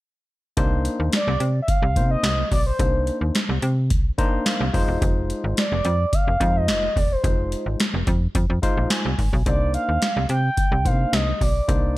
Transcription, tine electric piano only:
0, 0, Header, 1, 2, 480
1, 0, Start_track
1, 0, Tempo, 555556
1, 495, Time_signature, 4, 2, 24, 8
1, 10350, End_track
2, 0, Start_track
2, 0, Title_t, "Tine electric piano"
2, 0, Program_c, 0, 4
2, 491, Note_on_c, 0, 58, 86
2, 492, Note_on_c, 0, 62, 78
2, 494, Note_on_c, 0, 63, 76
2, 498, Note_on_c, 0, 72, 94
2, 1014, Note_off_c, 0, 58, 0
2, 1015, Note_off_c, 0, 62, 0
2, 1016, Note_off_c, 0, 63, 0
2, 1018, Note_off_c, 0, 72, 0
2, 1693, Note_on_c, 0, 58, 63
2, 1695, Note_on_c, 0, 60, 61
2, 1698, Note_on_c, 0, 63, 59
2, 1701, Note_on_c, 0, 72, 77
2, 2088, Note_off_c, 0, 58, 0
2, 2090, Note_off_c, 0, 60, 0
2, 2091, Note_off_c, 0, 63, 0
2, 2093, Note_off_c, 0, 72, 0
2, 2413, Note_on_c, 0, 58, 71
2, 2413, Note_on_c, 0, 62, 68
2, 2416, Note_on_c, 0, 63, 66
2, 2418, Note_on_c, 0, 72, 83
2, 2935, Note_off_c, 0, 58, 0
2, 2935, Note_off_c, 0, 62, 0
2, 2936, Note_off_c, 0, 63, 0
2, 2938, Note_off_c, 0, 72, 0
2, 3612, Note_on_c, 0, 58, 90
2, 3612, Note_on_c, 0, 62, 82
2, 3614, Note_on_c, 0, 82, 70
2, 3615, Note_on_c, 0, 63, 74
2, 3616, Note_on_c, 0, 72, 98
2, 3838, Note_off_c, 0, 82, 0
2, 3854, Note_on_c, 0, 77, 72
2, 4008, Note_off_c, 0, 58, 0
2, 4008, Note_off_c, 0, 62, 0
2, 4009, Note_off_c, 0, 63, 0
2, 4010, Note_off_c, 0, 72, 0
2, 4088, Note_on_c, 0, 56, 92
2, 4091, Note_on_c, 0, 63, 85
2, 4094, Note_on_c, 0, 65, 88
2, 4096, Note_on_c, 0, 72, 101
2, 4301, Note_off_c, 0, 77, 0
2, 4862, Note_off_c, 0, 56, 0
2, 4864, Note_off_c, 0, 63, 0
2, 4865, Note_off_c, 0, 65, 0
2, 4866, Note_off_c, 0, 72, 0
2, 5530, Note_on_c, 0, 56, 71
2, 5533, Note_on_c, 0, 63, 68
2, 5536, Note_on_c, 0, 65, 68
2, 5538, Note_on_c, 0, 72, 78
2, 5927, Note_off_c, 0, 56, 0
2, 5928, Note_off_c, 0, 63, 0
2, 5930, Note_off_c, 0, 65, 0
2, 5931, Note_off_c, 0, 72, 0
2, 6249, Note_on_c, 0, 56, 74
2, 6252, Note_on_c, 0, 63, 67
2, 6253, Note_on_c, 0, 65, 63
2, 6256, Note_on_c, 0, 72, 82
2, 6773, Note_off_c, 0, 56, 0
2, 6775, Note_off_c, 0, 63, 0
2, 6775, Note_off_c, 0, 65, 0
2, 6776, Note_off_c, 0, 72, 0
2, 7449, Note_on_c, 0, 56, 74
2, 7452, Note_on_c, 0, 63, 81
2, 7454, Note_on_c, 0, 77, 70
2, 7455, Note_on_c, 0, 65, 73
2, 7457, Note_on_c, 0, 72, 94
2, 7677, Note_off_c, 0, 77, 0
2, 7697, Note_on_c, 0, 80, 68
2, 7847, Note_off_c, 0, 56, 0
2, 7848, Note_off_c, 0, 63, 0
2, 7850, Note_off_c, 0, 65, 0
2, 7850, Note_off_c, 0, 72, 0
2, 8142, Note_off_c, 0, 80, 0
2, 8174, Note_on_c, 0, 58, 74
2, 8175, Note_on_c, 0, 62, 63
2, 8179, Note_on_c, 0, 63, 64
2, 8181, Note_on_c, 0, 72, 78
2, 8695, Note_off_c, 0, 58, 0
2, 8696, Note_off_c, 0, 62, 0
2, 8698, Note_off_c, 0, 63, 0
2, 8699, Note_off_c, 0, 72, 0
2, 9374, Note_on_c, 0, 58, 70
2, 9374, Note_on_c, 0, 62, 60
2, 9376, Note_on_c, 0, 63, 61
2, 9380, Note_on_c, 0, 72, 77
2, 9769, Note_off_c, 0, 58, 0
2, 9769, Note_off_c, 0, 62, 0
2, 9770, Note_off_c, 0, 63, 0
2, 9772, Note_off_c, 0, 72, 0
2, 10090, Note_on_c, 0, 58, 77
2, 10093, Note_on_c, 0, 62, 63
2, 10095, Note_on_c, 0, 63, 69
2, 10096, Note_on_c, 0, 72, 81
2, 10350, Note_off_c, 0, 58, 0
2, 10350, Note_off_c, 0, 62, 0
2, 10350, Note_off_c, 0, 63, 0
2, 10350, Note_off_c, 0, 72, 0
2, 10350, End_track
0, 0, End_of_file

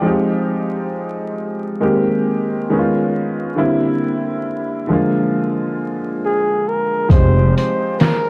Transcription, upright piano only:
0, 0, Header, 1, 2, 480
1, 0, Start_track
1, 0, Tempo, 882353
1, 22, Time_signature, 4, 2, 24, 8
1, 4513, End_track
2, 0, Start_track
2, 0, Title_t, "Upright piano"
2, 0, Program_c, 0, 0
2, 0, Control_c, 0, 64, 127
2, 8, Note_on_c, 0, 53, 67
2, 16, Note_on_c, 0, 56, 61
2, 24, Note_on_c, 0, 60, 62
2, 28, Control_c, 0, 64, 0
2, 31, Note_on_c, 0, 63, 64
2, 40, Note_on_c, 0, 67, 73
2, 137, Control_c, 0, 64, 127
2, 955, Note_off_c, 0, 53, 0
2, 960, Note_off_c, 0, 56, 0
2, 964, Note_off_c, 0, 60, 0
2, 968, Note_off_c, 0, 63, 0
2, 972, Note_off_c, 0, 67, 0
2, 981, Note_on_c, 0, 51, 60
2, 984, Note_on_c, 0, 56, 65
2, 989, Control_c, 0, 64, 0
2, 989, Note_on_c, 0, 58, 60
2, 991, Note_on_c, 0, 60, 57
2, 996, Note_on_c, 0, 67, 72
2, 1083, Control_c, 0, 64, 127
2, 1457, Note_off_c, 0, 51, 0
2, 1462, Note_off_c, 0, 56, 0
2, 1465, Note_off_c, 0, 58, 0
2, 1466, Note_on_c, 0, 51, 68
2, 1467, Note_off_c, 0, 60, 0
2, 1468, Control_c, 0, 64, 0
2, 1469, Note_off_c, 0, 67, 0
2, 1470, Note_on_c, 0, 56, 63
2, 1474, Note_on_c, 0, 59, 62
2, 1478, Note_on_c, 0, 61, 60
2, 1482, Note_on_c, 0, 63, 56
2, 1513, Note_off_c, 0, 63, 0
2, 1517, Note_on_c, 0, 65, 73
2, 1575, Control_c, 0, 64, 127
2, 1935, Note_on_c, 0, 50, 66
2, 1938, Note_on_c, 0, 55, 63
2, 1944, Note_off_c, 0, 51, 0
2, 1944, Note_on_c, 0, 58, 61
2, 1946, Note_off_c, 0, 56, 0
2, 1948, Note_off_c, 0, 59, 0
2, 1948, Note_on_c, 0, 60, 69
2, 1949, Control_c, 0, 64, 0
2, 1950, Note_off_c, 0, 61, 0
2, 1950, Note_on_c, 0, 64, 84
2, 1969, Note_off_c, 0, 65, 0
2, 2054, Control_c, 0, 64, 127
2, 2642, Note_off_c, 0, 50, 0
2, 2650, Note_on_c, 0, 50, 66
2, 2659, Note_on_c, 0, 53, 58
2, 2660, Note_off_c, 0, 55, 0
2, 2663, Note_off_c, 0, 58, 0
2, 2665, Note_off_c, 0, 60, 0
2, 2666, Note_off_c, 0, 64, 0
2, 2666, Note_on_c, 0, 56, 55
2, 2670, Control_c, 0, 64, 0
2, 2675, Note_on_c, 0, 58, 63
2, 2683, Note_on_c, 0, 65, 73
2, 2756, Control_c, 0, 64, 127
2, 3834, Note_off_c, 0, 50, 0
2, 3839, Note_off_c, 0, 53, 0
2, 3842, Note_off_c, 0, 56, 0
2, 3847, Note_off_c, 0, 58, 0
2, 3851, Note_off_c, 0, 65, 0
2, 3857, Note_on_c, 0, 53, 62
2, 3866, Note_on_c, 0, 56, 62
2, 3868, Control_c, 0, 64, 0
2, 3872, Note_on_c, 0, 60, 61
2, 3882, Note_on_c, 0, 63, 56
2, 3890, Note_on_c, 0, 67, 77
2, 3949, Control_c, 0, 64, 127
2, 4513, Note_off_c, 0, 53, 0
2, 4513, Note_off_c, 0, 56, 0
2, 4513, Note_off_c, 0, 60, 0
2, 4513, Note_off_c, 0, 63, 0
2, 4513, Note_off_c, 0, 67, 0
2, 4513, End_track
0, 0, End_of_file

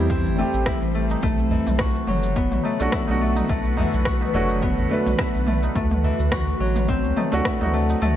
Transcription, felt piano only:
0, 0, Header, 1, 2, 480
1, 0, Start_track
1, 0, Tempo, 566038
1, 1044, Time_signature, 4, 2, 24, 8
1, 6923, End_track
2, 0, Start_track
2, 0, Title_t, "Felt piano"
2, 0, Program_c, 0, 0
2, 0, Note_on_c, 0, 55, 86
2, 0, Note_on_c, 0, 60, 76
2, 0, Note_on_c, 0, 64, 95
2, 295, Note_off_c, 0, 55, 0
2, 300, Note_off_c, 0, 60, 0
2, 304, Note_off_c, 0, 64, 0
2, 311, Note_on_c, 0, 55, 69
2, 326, Note_on_c, 0, 60, 66
2, 345, Note_on_c, 0, 67, 83
2, 1025, Note_off_c, 0, 55, 0
2, 1032, Note_off_c, 0, 60, 0
2, 1042, Note_off_c, 0, 67, 0
2, 2372, Note_on_c, 0, 57, 80
2, 2380, Note_on_c, 0, 62, 73
2, 2388, Note_on_c, 0, 66, 82
2, 2583, Note_off_c, 0, 57, 0
2, 2587, Note_off_c, 0, 62, 0
2, 2591, Note_off_c, 0, 66, 0
2, 2603, Note_on_c, 0, 57, 73
2, 2620, Note_on_c, 0, 62, 72
2, 2635, Note_on_c, 0, 66, 85
2, 3650, Note_off_c, 0, 57, 0
2, 3659, Note_off_c, 0, 62, 0
2, 3666, Note_off_c, 0, 66, 0
2, 3677, Note_on_c, 0, 57, 87
2, 3687, Note_on_c, 0, 62, 72
2, 3695, Note_on_c, 0, 66, 89
2, 4135, Note_off_c, 0, 57, 0
2, 4140, Note_off_c, 0, 62, 0
2, 4144, Note_off_c, 0, 66, 0
2, 4148, Note_on_c, 0, 57, 72
2, 4164, Note_on_c, 0, 62, 67
2, 4182, Note_on_c, 0, 71, 82
2, 4863, Note_off_c, 0, 57, 0
2, 4871, Note_off_c, 0, 62, 0
2, 4880, Note_off_c, 0, 71, 0
2, 6206, Note_on_c, 0, 57, 87
2, 6215, Note_on_c, 0, 62, 74
2, 6222, Note_on_c, 0, 66, 89
2, 6420, Note_off_c, 0, 57, 0
2, 6424, Note_off_c, 0, 62, 0
2, 6428, Note_off_c, 0, 66, 0
2, 6436, Note_on_c, 0, 57, 77
2, 6453, Note_on_c, 0, 62, 69
2, 6469, Note_on_c, 0, 66, 84
2, 6923, Note_off_c, 0, 57, 0
2, 6923, Note_off_c, 0, 62, 0
2, 6923, Note_off_c, 0, 66, 0
2, 6923, End_track
0, 0, End_of_file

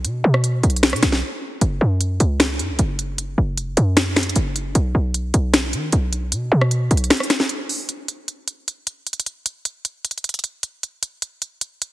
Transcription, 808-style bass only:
0, 0, Header, 1, 2, 480
1, 0, Start_track
1, 0, Tempo, 392157
1, 56, Time_signature, 4, 2, 24, 8
1, 14600, End_track
2, 0, Start_track
2, 0, Title_t, "808-style bass"
2, 0, Program_c, 0, 38
2, 56, Note_on_c, 0, 47, 95
2, 284, Note_off_c, 0, 47, 0
2, 296, Note_on_c, 0, 47, 101
2, 757, Note_off_c, 0, 47, 0
2, 776, Note_on_c, 0, 35, 109
2, 1136, Note_on_c, 0, 47, 98
2, 1154, Note_off_c, 0, 35, 0
2, 1250, Note_off_c, 0, 47, 0
2, 1255, Note_on_c, 0, 35, 108
2, 1496, Note_off_c, 0, 35, 0
2, 1976, Note_on_c, 0, 30, 113
2, 2206, Note_off_c, 0, 30, 0
2, 2216, Note_on_c, 0, 42, 106
2, 2677, Note_off_c, 0, 42, 0
2, 2695, Note_on_c, 0, 37, 108
2, 3176, Note_on_c, 0, 42, 99
2, 3194, Note_off_c, 0, 37, 0
2, 3297, Note_on_c, 0, 37, 100
2, 3315, Note_off_c, 0, 42, 0
2, 3410, Note_off_c, 0, 37, 0
2, 3416, Note_on_c, 0, 30, 103
2, 4107, Note_off_c, 0, 30, 0
2, 4136, Note_on_c, 0, 30, 103
2, 4376, Note_on_c, 0, 29, 97
2, 4394, Note_off_c, 0, 30, 0
2, 4496, Note_on_c, 0, 30, 97
2, 4514, Note_off_c, 0, 29, 0
2, 4610, Note_off_c, 0, 30, 0
2, 4616, Note_on_c, 0, 42, 109
2, 5307, Note_off_c, 0, 42, 0
2, 5336, Note_on_c, 0, 30, 103
2, 5797, Note_off_c, 0, 30, 0
2, 5816, Note_on_c, 0, 35, 111
2, 6046, Note_off_c, 0, 35, 0
2, 6056, Note_on_c, 0, 35, 104
2, 6517, Note_off_c, 0, 35, 0
2, 6535, Note_on_c, 0, 35, 111
2, 7016, Note_on_c, 0, 51, 99
2, 7034, Note_off_c, 0, 35, 0
2, 7244, Note_off_c, 0, 51, 0
2, 7256, Note_on_c, 0, 35, 104
2, 7735, Note_on_c, 0, 47, 98
2, 7754, Note_off_c, 0, 35, 0
2, 7964, Note_off_c, 0, 47, 0
2, 7976, Note_on_c, 0, 47, 105
2, 8437, Note_off_c, 0, 47, 0
2, 8456, Note_on_c, 0, 35, 109
2, 8696, Note_off_c, 0, 35, 0
2, 14600, End_track
0, 0, End_of_file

